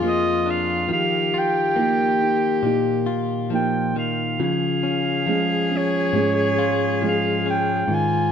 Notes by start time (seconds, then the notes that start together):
Already playing: F2 F3 F4 G#4
0.02 F3 A#3 G#4
0.07 D#5
0.46 D4
0.50 F5
0.89 D#3 F3 G4
0.93 F5
1.34 F4
1.38 G5
1.76 A#3 D#4 G4
2.22 D#4
2.63 A#2 A#3 D#4 G4
3.06 F4
3.50 F3 A#3 D#4 G4
3.55 G5
3.96 D#3 F5
4.39 C#3 F3 G#4 F5
4.83 C#4
5.26 F3 G#3 C#4 G#4
5.71 C#4
5.77 C#5
6.13 G#2 G#3 C#4 G#4
6.58 F4
7.02 F3 G#3 C#4 G#4
7.08 F5
7.46 C#4
7.50 G5
7.88 G#2 D#3 F4
7.94 G#5